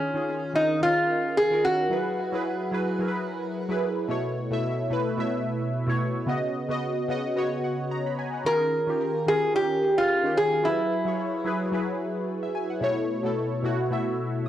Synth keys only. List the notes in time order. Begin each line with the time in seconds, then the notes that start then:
Already playing: D#3 C#4 F4 G#4
0.14 D#3 C#4 F4 G#4
0.53 D#3 C#4 F4 A#4
0.81 D#3 C#4 F4 A#4
1.50 D#3 C#4 F4 A#4
1.90 F#3 E4 G#4 B4
2.32 F#3 E4 G#4 B4
2.72 F#3 E4 G#4 B4
2.99 F#3 E4 G#4 A#4
3.08 B4
3.69 F#3 E4 G#4 B4
4.08 B2 A3 E4 C#5
4.50 B2 A3 E4 E5
4.90 B2 A3 E4 B4
5.17 B2 A3 E4 E5
5.87 B2 A3 E4 C#5
6.26 C#3 B3 F#4 D#5
6.68 C#3 B3 F#4 D#5
7.08 C#3 B3 F#4 D#5 F#5
7.35 C#3 B3 F#4 C#5 D#5
7.64 F#5
7.91 A#5
8.06 B5
8.19 G#5
8.34 F#5
8.44 D#3 C#4 F4 G#4
8.87 D#3 C#4 F4 G4
9.26 D#3 C#4 F4 A#4
9.54 D#3 C#4 F4 G4
10.23 D#3 C#4 F4 G4
10.63 F#3 E4 G#4 B4
11.05 F#3 E4 G#4 C#5
11.44 F#3 E4 G#4 B4
11.72 F#3 E4 G#4 B4
12.43 E5
12.55 G#5
12.70 F#5
12.81 B2 A3 E4 C#5
13.23 B2 A3 E4 A4
13.62 B2 A3 E4 F#4
13.90 B2 A3 E4 E5